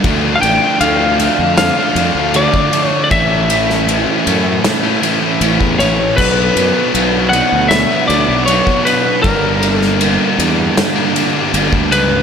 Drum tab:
CC |----------------|----------------|x---------------|----------------|
RD |x-x-x-x-x-x-x-x-|x-x-x-x-x-x-x-x-|--x-x-x-x-x-x-x-|x-x-x-x-x-x-x-x-|
SD |--------o-------|---o----o-------|--------o-------|---o----o-------|
BD |o------------o--|o------------o--|o------------o--|o------------o--|